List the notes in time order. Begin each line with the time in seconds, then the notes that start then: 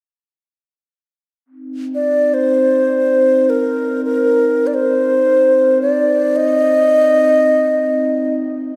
1.46 C4
1.50 D#4
1.95 D5
2.34 C5
3.50 A#4
4.05 A#4
4.67 D5
4.74 C5
5.82 D5
6.36 D#5